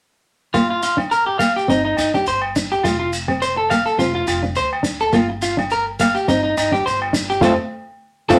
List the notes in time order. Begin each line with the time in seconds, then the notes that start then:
0.54 G1 A#3 F4, low agogo, maracas
0.70 F4
0.82 F4, maracas
0.97 D4, low agogo, maracas
1.11 A#4, maracas
1.26 G4
1.39 A#3 F5, low agogo, maracas
1.56 G4, maracas
1.68 G1 C4 D#4, maracas
1.85 D#4
1.97 G1 D#4, low agogo, maracas
2.14 D4 G4, maracas
2.26 G1 C5, maracas
2.42 low agogo
2.56 D4, maracas
2.72 G4, maracas
2.84 F1 A3 F4, low agogo, maracas
3.00 F4
3.13 maracas
3.28 C4, low agogo, maracas
3.42 C5, maracas
3.57 A4
3.70 A#3 F5, low agogo, maracas
3.86 A4, maracas
3.98 F1 C4 F4, maracas
4.15 F4
4.27 F1 F4, low agogo, maracas
4.43 D4, maracas
4.55 D2 C5, maracas
4.73 low agogo
4.83 D4, maracas
5.00 A4, maracas
5.13 G1 A#3 F4, low agogo, maracas
5.30 muted clean electric guitar stroke
5.42 F4, maracas
5.57 D4, low agogo, maracas
5.70 A#4, maracas
5.99 A#3 F5, low agogo, maracas
6.15 G4, maracas
6.28 G1 C4 D#4, maracas
6.43 D#4
6.57 G1 D#4, low agogo, maracas
6.72 D4 G4, maracas
6.86 G1 C5, maracas
7.02 low agogo
7.13 D4, maracas
7.30 G4, maracas
7.41 F2 A3 C4 F4 A4, low agogo, maracas
8.29 F2 A3 C4 F4 A4, low agogo, maracas